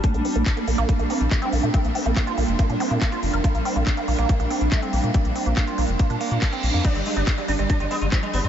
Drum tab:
CC |----------------|----------------|----------------|----------------|
HH |xxoxxxoxxxoxxxox|xxoxxxoxxxoxxxox|xxoxxxoxxxoxxxox|xxoxxxoxxxoxxxo-|
CP |----x-------x---|----x-------x---|----x-------x---|----x-------x---|
BD |o---o---o---o---|o---o---o---o---|o---o---o---o---|o---o---o---o---|

CC |x---------------|
HH |xxoxxxoxxxoxxxox|
CP |----x-------x---|
BD |o---o---o---o---|